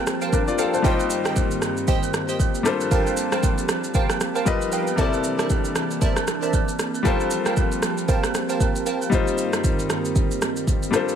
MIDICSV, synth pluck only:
0, 0, Header, 1, 2, 480
1, 0, Start_track
1, 0, Key_signature, -2, "minor"
1, 0, Tempo, 517241
1, 784, Time_signature, 4, 2, 24, 8
1, 10351, End_track
2, 0, Start_track
2, 0, Title_t, "Synth pluck"
2, 0, Program_c, 0, 84
2, 199, Note_on_c, 0, 70, 77
2, 200, Note_on_c, 0, 72, 71
2, 201, Note_on_c, 0, 77, 73
2, 203, Note_on_c, 0, 79, 71
2, 205, Note_on_c, 0, 81, 89
2, 517, Note_off_c, 0, 70, 0
2, 518, Note_off_c, 0, 72, 0
2, 519, Note_off_c, 0, 77, 0
2, 519, Note_off_c, 0, 79, 0
2, 521, Note_off_c, 0, 81, 0
2, 540, Note_on_c, 0, 70, 77
2, 542, Note_on_c, 0, 72, 73
2, 543, Note_on_c, 0, 77, 76
2, 545, Note_on_c, 0, 79, 72
2, 545, Note_on_c, 0, 81, 86
2, 766, Note_off_c, 0, 70, 0
2, 767, Note_off_c, 0, 72, 0
2, 767, Note_off_c, 0, 77, 0
2, 768, Note_off_c, 0, 79, 0
2, 768, Note_off_c, 0, 81, 0
2, 780, Note_on_c, 0, 67, 97
2, 782, Note_on_c, 0, 72, 84
2, 784, Note_on_c, 0, 75, 88
2, 786, Note_on_c, 0, 79, 107
2, 1128, Note_off_c, 0, 67, 0
2, 1129, Note_off_c, 0, 72, 0
2, 1130, Note_off_c, 0, 75, 0
2, 1130, Note_off_c, 0, 79, 0
2, 1159, Note_on_c, 0, 67, 78
2, 1161, Note_on_c, 0, 72, 72
2, 1163, Note_on_c, 0, 75, 71
2, 1165, Note_on_c, 0, 79, 85
2, 1241, Note_off_c, 0, 67, 0
2, 1242, Note_off_c, 0, 72, 0
2, 1243, Note_off_c, 0, 75, 0
2, 1244, Note_off_c, 0, 79, 0
2, 1741, Note_on_c, 0, 67, 97
2, 1743, Note_on_c, 0, 72, 86
2, 1744, Note_on_c, 0, 75, 87
2, 1747, Note_on_c, 0, 79, 101
2, 1853, Note_off_c, 0, 67, 0
2, 1854, Note_off_c, 0, 72, 0
2, 1855, Note_off_c, 0, 75, 0
2, 1856, Note_off_c, 0, 79, 0
2, 2122, Note_on_c, 0, 67, 77
2, 2123, Note_on_c, 0, 72, 73
2, 2125, Note_on_c, 0, 75, 71
2, 2127, Note_on_c, 0, 79, 85
2, 2202, Note_off_c, 0, 67, 0
2, 2203, Note_off_c, 0, 72, 0
2, 2204, Note_off_c, 0, 75, 0
2, 2205, Note_off_c, 0, 79, 0
2, 2702, Note_on_c, 0, 70, 96
2, 2703, Note_on_c, 0, 72, 83
2, 2704, Note_on_c, 0, 77, 88
2, 2706, Note_on_c, 0, 79, 87
2, 2708, Note_on_c, 0, 81, 104
2, 3049, Note_off_c, 0, 70, 0
2, 3049, Note_off_c, 0, 72, 0
2, 3050, Note_off_c, 0, 77, 0
2, 3051, Note_off_c, 0, 79, 0
2, 3052, Note_off_c, 0, 81, 0
2, 3079, Note_on_c, 0, 70, 76
2, 3081, Note_on_c, 0, 72, 71
2, 3083, Note_on_c, 0, 77, 71
2, 3084, Note_on_c, 0, 79, 70
2, 3085, Note_on_c, 0, 81, 88
2, 3161, Note_off_c, 0, 70, 0
2, 3162, Note_off_c, 0, 72, 0
2, 3163, Note_off_c, 0, 77, 0
2, 3163, Note_off_c, 0, 79, 0
2, 3164, Note_off_c, 0, 81, 0
2, 3661, Note_on_c, 0, 70, 89
2, 3663, Note_on_c, 0, 72, 86
2, 3664, Note_on_c, 0, 77, 85
2, 3665, Note_on_c, 0, 79, 86
2, 3666, Note_on_c, 0, 81, 103
2, 3773, Note_off_c, 0, 70, 0
2, 3774, Note_off_c, 0, 72, 0
2, 3775, Note_off_c, 0, 77, 0
2, 3775, Note_off_c, 0, 79, 0
2, 3775, Note_off_c, 0, 81, 0
2, 4040, Note_on_c, 0, 70, 77
2, 4041, Note_on_c, 0, 72, 69
2, 4042, Note_on_c, 0, 77, 75
2, 4044, Note_on_c, 0, 79, 74
2, 4045, Note_on_c, 0, 81, 88
2, 4142, Note_off_c, 0, 70, 0
2, 4143, Note_off_c, 0, 72, 0
2, 4143, Note_off_c, 0, 77, 0
2, 4144, Note_off_c, 0, 79, 0
2, 4145, Note_off_c, 0, 81, 0
2, 4381, Note_on_c, 0, 71, 79
2, 4383, Note_on_c, 0, 75, 73
2, 4385, Note_on_c, 0, 77, 76
2, 4387, Note_on_c, 0, 79, 86
2, 4607, Note_off_c, 0, 71, 0
2, 4607, Note_off_c, 0, 75, 0
2, 4608, Note_off_c, 0, 77, 0
2, 4609, Note_off_c, 0, 79, 0
2, 4621, Note_on_c, 0, 70, 100
2, 4622, Note_on_c, 0, 72, 91
2, 4624, Note_on_c, 0, 74, 90
2, 4624, Note_on_c, 0, 76, 86
2, 4626, Note_on_c, 0, 81, 107
2, 4968, Note_off_c, 0, 70, 0
2, 4968, Note_off_c, 0, 72, 0
2, 4970, Note_off_c, 0, 74, 0
2, 4970, Note_off_c, 0, 76, 0
2, 4971, Note_off_c, 0, 81, 0
2, 4999, Note_on_c, 0, 70, 78
2, 5000, Note_on_c, 0, 72, 69
2, 5002, Note_on_c, 0, 74, 71
2, 5003, Note_on_c, 0, 76, 69
2, 5004, Note_on_c, 0, 81, 86
2, 5081, Note_off_c, 0, 70, 0
2, 5082, Note_off_c, 0, 72, 0
2, 5082, Note_off_c, 0, 74, 0
2, 5083, Note_off_c, 0, 76, 0
2, 5084, Note_off_c, 0, 81, 0
2, 5580, Note_on_c, 0, 70, 94
2, 5581, Note_on_c, 0, 72, 84
2, 5582, Note_on_c, 0, 74, 85
2, 5584, Note_on_c, 0, 76, 83
2, 5586, Note_on_c, 0, 81, 101
2, 5692, Note_off_c, 0, 70, 0
2, 5693, Note_off_c, 0, 72, 0
2, 5693, Note_off_c, 0, 74, 0
2, 5694, Note_off_c, 0, 76, 0
2, 5695, Note_off_c, 0, 81, 0
2, 5961, Note_on_c, 0, 70, 76
2, 5963, Note_on_c, 0, 72, 71
2, 5964, Note_on_c, 0, 74, 71
2, 5965, Note_on_c, 0, 76, 72
2, 5966, Note_on_c, 0, 81, 90
2, 6042, Note_off_c, 0, 70, 0
2, 6043, Note_off_c, 0, 72, 0
2, 6044, Note_off_c, 0, 74, 0
2, 6044, Note_off_c, 0, 76, 0
2, 6045, Note_off_c, 0, 81, 0
2, 6541, Note_on_c, 0, 70, 97
2, 6543, Note_on_c, 0, 72, 85
2, 6544, Note_on_c, 0, 77, 89
2, 6545, Note_on_c, 0, 79, 88
2, 6547, Note_on_c, 0, 81, 105
2, 6888, Note_off_c, 0, 70, 0
2, 6889, Note_off_c, 0, 72, 0
2, 6890, Note_off_c, 0, 77, 0
2, 6890, Note_off_c, 0, 79, 0
2, 6891, Note_off_c, 0, 81, 0
2, 6921, Note_on_c, 0, 70, 79
2, 6923, Note_on_c, 0, 72, 68
2, 6924, Note_on_c, 0, 77, 69
2, 6925, Note_on_c, 0, 79, 74
2, 6927, Note_on_c, 0, 81, 84
2, 7002, Note_off_c, 0, 70, 0
2, 7003, Note_off_c, 0, 72, 0
2, 7004, Note_off_c, 0, 77, 0
2, 7004, Note_off_c, 0, 79, 0
2, 7005, Note_off_c, 0, 81, 0
2, 7501, Note_on_c, 0, 70, 91
2, 7503, Note_on_c, 0, 72, 86
2, 7504, Note_on_c, 0, 77, 85
2, 7506, Note_on_c, 0, 79, 88
2, 7507, Note_on_c, 0, 81, 103
2, 7613, Note_off_c, 0, 70, 0
2, 7614, Note_off_c, 0, 72, 0
2, 7615, Note_off_c, 0, 77, 0
2, 7615, Note_off_c, 0, 79, 0
2, 7616, Note_off_c, 0, 81, 0
2, 7880, Note_on_c, 0, 70, 79
2, 7882, Note_on_c, 0, 72, 71
2, 7883, Note_on_c, 0, 77, 75
2, 7884, Note_on_c, 0, 79, 72
2, 7886, Note_on_c, 0, 81, 87
2, 8198, Note_off_c, 0, 70, 0
2, 8199, Note_off_c, 0, 72, 0
2, 8199, Note_off_c, 0, 77, 0
2, 8200, Note_off_c, 0, 79, 0
2, 8201, Note_off_c, 0, 81, 0
2, 8223, Note_on_c, 0, 70, 80
2, 8225, Note_on_c, 0, 72, 73
2, 8225, Note_on_c, 0, 77, 72
2, 8226, Note_on_c, 0, 79, 74
2, 8228, Note_on_c, 0, 81, 84
2, 8447, Note_off_c, 0, 70, 0
2, 8448, Note_off_c, 0, 72, 0
2, 8448, Note_off_c, 0, 77, 0
2, 8449, Note_off_c, 0, 79, 0
2, 8450, Note_off_c, 0, 81, 0
2, 10351, End_track
0, 0, End_of_file